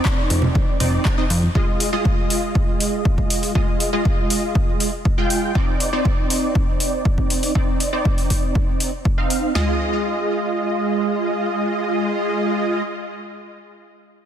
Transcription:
0.00 0.78 C4 medium
0.00 0.78 D#4 medium
0.00 0.78 D5 medium
0.05 kick loud
0.05 clap loud
0.30 0.49 F1 loud
0.30 open hi-hat loud
0.30 high conga medium
0.42 low conga medium
0.55 kick loud
0.55 high conga medium
0.80 0.99 F1 medium
0.80 1.15 C4 medium
0.80 1.15 D#4 medium
0.80 1.15 D5 medium
0.80 open hi-hat loud
0.80 low conga medium
1.05 kick loud
1.05 clap loud
1.18 1.24 C4 medium
1.18 1.24 D#4 medium
1.18 1.24 D#5 loud
1.30 1.49 F2 medium
1.30 open hi-hat loud
1.43 high conga medium
1.55 1.90 G#3 medium
1.55 1.90 F4 medium
1.55 1.90 D#5 medium
1.55 kick loud
1.80 open hi-hat loud
1.93 3.52 G#3 medium
1.93 3.52 F4 medium
1.93 3.52 D#5 medium
2.05 kick loud
2.30 open hi-hat loud
2.55 kick loud
2.80 open hi-hat loud
3.05 kick loud
3.18 kick medium
3.30 open hi-hat loud
3.43 open hi-hat medium
3.55 3.90 G#3 medium
3.55 3.90 F4 medium
3.55 3.90 D#5 medium
3.55 kick loud
3.80 open hi-hat loud
3.93 4.90 G#3 medium
3.93 4.90 F4 medium
3.93 4.90 D#5 medium
4.05 kick loud
4.30 open hi-hat loud
4.55 kick loud
4.80 open hi-hat medium
5.05 kick loud
5.18 5.52 G#3 medium
5.18 5.52 F4 medium
5.18 5.52 G5 loud
5.30 open hi-hat loud
5.55 5.90 C4 medium
5.55 5.90 D#4 medium
5.55 5.90 D5 medium
5.55 kick loud
5.80 open hi-hat medium
5.93 7.52 C4 medium
5.93 7.52 D#4 medium
5.93 7.52 D5 medium
6.05 kick loud
6.30 open hi-hat medium
6.55 kick loud
6.80 open hi-hat medium
7.05 kick loud
7.18 kick medium
7.30 open hi-hat loud
7.43 open hi-hat medium
7.55 7.90 C4 medium
7.55 7.90 D#4 medium
7.55 7.90 D5 loud
7.55 kick loud
7.80 open hi-hat loud
7.93 8.90 C4 medium
7.93 8.90 D#4 medium
7.93 8.90 D5 medium
8.05 kick loud
8.18 open hi-hat medium
8.30 kick medium
8.30 open hi-hat medium
8.55 kick loud
8.80 open hi-hat loud
9.05 kick loud
9.18 9.52 C4 medium
9.18 9.52 D#4 medium
9.18 9.52 F5 loud
9.30 open hi-hat medium
9.55 12.82 G#3 medium
9.55 12.82 F4 medium
9.55 12.82 D#5 medium
9.55 snare loud
9.55 floor tom loud

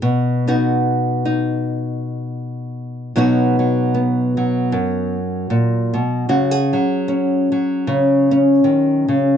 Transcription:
0.00 3.14 B2 medium
0.00 0.47 B3 medium
0.47 3.13 B3 medium
0.47 1.24 D#4 medium
0.47 3.17 F#4 medium
1.25 3.13 D#4 medium
3.16 4.73 B2 medium
3.16 3.59 F#3 medium
3.16 3.93 B3 medium
3.16 6.26 D#4 medium
3.16 6.29 F#4 medium
3.59 4.37 F#3 medium
3.94 5.16 B3 soft
4.37 6.54 F#3 medium
4.72 5.50 F#2 medium
5.50 5.94 A#2 medium
5.94 6.28 B2 medium
6.29 6.73 C#3 medium
6.29 6.51 F#4 medium
6.51 9.37 G#4 medium
6.73 7.51 F#3 medium
7.08 8.30 C#4 medium
7.52 9.37 F#3 medium
7.87 8.64 C#3 medium
8.31 9.37 C#4 medium
8.64 9.08 D#3 medium
9.08 9.37 C#3 medium

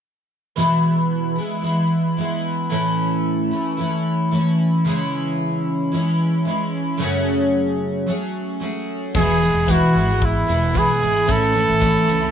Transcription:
0.56 1.37 E2 medium
0.56 1.37 B2 medium
0.56 1.38 E3 medium
0.56 1.37 G#3 medium
0.56 1.36 B3 medium
0.56 1.35 E4 medium
1.36 1.61 E3 soft
1.36 1.62 G#3 soft
1.36 1.64 B3 soft
1.36 1.63 E4 soft
1.62 2.16 E3 soft
1.62 2.17 G#3 soft
1.62 2.18 B3 medium
1.62 2.20 E4 medium
2.17 2.70 E3 soft
2.17 2.71 G#3 soft
2.17 2.71 B3 medium
2.17 2.72 E4 medium
2.70 3.51 A2 medium
2.70 3.77 E3 medium
2.70 3.52 A3 medium
2.70 3.52 C#4 medium
2.70 3.51 E4 medium
3.51 3.77 A3 soft
3.51 3.78 C#4 soft
3.51 3.78 E4 soft
3.77 4.31 E3 soft
3.77 4.31 A3 soft
3.77 4.33 C#4 soft
3.77 4.34 E4 medium
4.31 4.85 E3 medium
4.31 4.86 A3 soft
4.31 4.88 C#4 medium
4.31 4.89 E4 medium
4.84 5.92 C#3 medium
4.84 5.90 E3 medium
4.84 5.92 G#3 medium
4.84 5.93 C#4 medium
4.89 5.93 E4 medium
5.92 6.44 E3 soft
5.92 6.46 G#3 medium
5.92 6.47 C#4 medium
5.92 6.47 E4 medium
6.45 6.99 E3 medium
6.45 7.00 G#3 medium
6.45 7.01 C#4 medium
6.45 7.01 E4 medium
6.97 8.06 F#2 medium
6.97 8.06 C#3 medium
6.97 8.05 F#3 medium
6.97 8.06 A3 medium
7.02 8.07 C#4 medium
7.02 8.09 G#4 medium
8.06 8.59 F#3 soft
8.06 8.60 A3 soft
8.06 8.61 C#4 medium
8.06 8.63 G#4 medium
8.60 9.14 F#3 medium
8.60 9.15 A3 soft
8.60 9.15 C#4 medium
8.60 9.16 G#4 medium
9.14 9.52 E1 medium
9.14 9.41 E2 medium
9.14 9.42 B2 medium
9.14 9.39 E3 medium
9.14 9.41 G#3 medium
9.14 9.42 B3 medium
9.14 9.42 E4 medium
9.14 9.72 G#4 medium
9.14 kick medium
9.14 crash medium
9.41 9.66 E3 soft
9.41 9.67 G#3 soft
9.41 9.67 B3 medium
9.41 9.67 E4 medium
9.54 9.79 E1 medium
9.67 9.94 E2 medium
9.67 9.94 B2 medium
9.67 9.93 E3 medium
9.67 9.94 G#3 medium
9.67 9.95 B3 medium
9.67 9.95 E4 medium
9.67 kick medium
9.71 10.27 F#4 medium
9.94 10.44 G#1 medium
9.94 10.08 E3 soft
9.94 10.08 G#3 medium
9.94 10.07 B3 medium
9.94 10.06 E4 medium
10.07 10.45 E3 soft
10.07 10.46 G#3 soft
10.07 10.48 B3 soft
10.07 10.48 E4 soft
10.22 10.80 E4 medium
10.22 kick medium
10.46 10.73 E1 medium
10.46 10.73 E3 soft
10.46 10.74 G#3 medium
10.46 10.74 B3 medium
10.46 10.74 E4 medium
10.73 11.00 B1 medium
10.73 10.88 E2 medium
10.73 10.88 B2 medium
10.73 10.88 E3 medium
10.73 10.87 G#3 medium
10.73 10.86 B3 medium
10.73 10.85 E4 medium
10.73 kick medium
10.79 11.33 G#4 medium
10.86 10.98 E3 soft
10.86 11.00 G#3 soft
10.86 11.01 B3 soft
10.86 11.01 E4 medium
10.99 11.27 G#1 medium
10.99 11.14 E3 medium
10.99 11.14 G#3 medium
10.99 11.13 B3 medium
10.99 11.12 E4 medium
11.13 11.26 E3 soft
11.13 11.27 G#3 soft
11.13 11.27 B3 soft
11.13 11.27 E4 soft
11.26 11.66 A1 medium
11.26 11.54 A2 medium
11.26 11.51 E3 medium
11.26 11.53 A3 medium
11.26 11.53 C#4 medium
11.26 11.55 E4 medium
11.26 kick medium
11.31 12.31 A4 loud
11.53 11.79 E3 soft
11.53 11.80 A3 medium
11.53 11.81 C#4 medium
11.53 11.81 E4 medium
11.70 11.94 A1 medium
11.80 12.08 A2 medium
11.80 12.06 E3 medium
11.80 12.06 A3 medium
11.80 12.08 C#4 medium
11.80 12.08 E4 medium
11.80 kick medium
12.07 12.31 C#2 medium
12.07 12.21 E3 medium
12.07 12.22 A3 medium
12.07 12.20 C#4 medium
12.07 12.19 E4 medium
12.20 12.31 A3 soft
12.20 12.31 C#4 soft
12.20 12.31 E4 medium

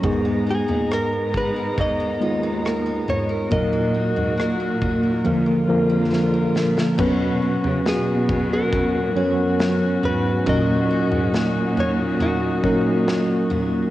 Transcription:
0.00 1.77 G#2 medium
0.00 0.65 G#2 medium
0.00 1.68 G#3 medium
0.00 3.48 G#3 medium
0.00 0.24 A#3 soft
0.00 1.69 B3 medium
0.00 3.48 B3 medium
0.00 0.12 C#4 soft
0.00 1.69 D#4 medium
0.00 5.21 D#4 medium
0.00 0.12 F#4 medium
0.00 3.48 A#5 medium
0.00 kick medium
0.00 floor tom medium
0.05 1.69 G#4 medium
0.25 0.67 B3 soft
0.46 1.34 D#4 soft
0.46 0.93 G#4 medium
0.68 0.89 A#2 medium
0.68 1.11 B3 soft
0.68 floor tom medium
0.90 2.17 G#2 medium
0.90 1.56 A#4 medium
0.90 1.32 A#4 medium
0.90 cross-stick medium
1.12 1.99 B3 medium
1.34 2.21 D#4 soft
1.34 1.80 B4 medium
1.34 kick medium
1.56 2.65 A#4 medium
1.78 3.52 G#2 medium
1.78 3.09 D#5 medium
1.78 kick medium
1.78 floor tom medium
2.00 2.42 B3 medium
2.20 3.04 D#2 medium
2.20 3.45 G#3 medium
2.20 3.45 B3 medium
2.20 3.45 D#4 medium
2.20 3.07 D#4 medium
2.20 3.45 F4 medium
2.43 2.85 B3 medium
2.65 3.29 A#4 medium
2.65 cross-stick medium
2.86 3.60 B3 soft
3.08 3.48 G#2 medium
3.08 3.60 D#4 soft
3.08 3.52 C#5 medium
3.08 floor tom medium
3.29 4.37 A#4 medium
3.50 5.23 A#2 medium
3.50 4.78 A#2 medium
3.50 4.13 A#2 medium
3.50 5.16 F#3 medium
3.50 5.16 A#3 medium
3.50 6.96 A#3 medium
3.50 5.17 D#4 medium
3.50 5.24 F#4 medium
3.50 5.17 A#4 medium
3.50 6.09 D#5 medium
3.50 kick medium
3.50 floor tom medium
3.73 4.16 A#3 medium
3.95 4.80 D#4 medium
4.16 4.38 G#2 medium
4.16 4.59 A#3 soft
4.16 floor tom medium
4.38 5.21 A#2 medium
4.38 5.02 A#4 medium
4.38 cross-stick medium
4.60 5.34 A#3 medium
4.82 5.34 D#4 medium
4.82 kick medium
4.82 floor tom medium
5.03 5.34 A#4 medium
5.24 6.97 A#2 medium
5.24 5.65 A#2 loud
5.24 6.98 D3 medium
5.24 5.67 D3 medium
5.24 5.66 F3 medium
5.24 5.66 A#3 medium
5.24 6.98 F4 medium
5.24 5.67 A#4 medium
5.24 floor tom medium
5.46 5.88 A#3 medium
5.68 6.51 F2 medium
5.68 6.93 D3 medium
5.68 6.92 F3 medium
5.68 6.93 A#3 medium
5.68 6.93 A#4 medium
5.90 6.33 A#3 medium
6.11 6.76 A#4 medium
6.11 snare soft
6.34 7.08 A#3 medium
6.55 6.96 A#2 medium
6.55 7.07 D4 soft
6.55 snare medium
6.77 6.98 A#4 medium
6.77 snare medium
6.98 10.46 B2 medium
6.98 7.60 B2 loud
6.98 8.64 F#3 medium
6.98 10.43 B3 medium
6.98 8.64 B3 medium
6.98 13.90 C#4 medium
6.98 8.64 C#4 medium
6.98 13.90 F#4 medium
6.98 7.85 F#4 medium
6.98 8.65 B4 medium
6.98 kick medium
6.98 floor tom medium
6.98 crash medium
7.42 8.29 C#4 soft
7.64 7.84 C#3 medium
7.64 floor tom medium
7.86 9.16 B2 medium
7.86 9.16 F#4 medium
7.86 8.49 G#4 medium
7.86 snare loud
8.29 9.59 C#4 medium
8.29 kick medium
8.29 floor tom medium
8.53 10.09 A#4 medium
8.73 12.20 F#3 medium
8.73 kick medium
8.73 floor tom medium
9.16 9.99 F#2 medium
9.16 10.40 F#3 medium
9.16 10.40 B3 medium
9.16 10.40 C#4 medium
9.16 10.03 F#4 medium
9.16 10.41 C#5 medium
9.59 10.90 C#4 medium
9.59 snare loud
10.03 10.44 G#2 medium
10.03 10.47 F#4 medium
10.03 10.49 B4 medium
10.03 floor tom medium
10.46 11.08 A#2 loud
10.46 13.90 A#2 medium
10.46 11.73 A#2 medium
10.46 12.12 F#3 medium
10.46 12.12 C#4 medium
10.46 12.12 D#4 medium
10.46 13.90 D#4 medium
10.46 11.33 F#4 medium
10.46 12.12 A#4 medium
10.46 11.80 D#5 loud
10.46 kick medium
10.46 floor tom loud
10.90 11.76 C#4 medium
11.12 11.32 G#2 medium
11.12 floor tom medium
11.33 12.60 A#2 loud
11.33 12.63 F#4 medium
11.33 snare loud
11.77 13.06 C#4 medium
11.77 11.91 C#5 medium
11.77 floor tom medium
12.20 13.90 D#3 medium
12.20 13.48 F#4 medium
12.20 floor tom medium
12.63 13.47 A#2 medium
12.63 13.88 F#3 medium
12.63 13.88 C#4 medium
12.63 13.88 D#4 medium
12.63 13.50 F#4 medium
12.63 13.89 A#4 medium
12.63 kick medium
13.08 13.90 C#4 medium
13.08 snare loud
13.50 13.90 A#2 medium
13.50 13.90 F#4 medium
13.50 floor tom medium

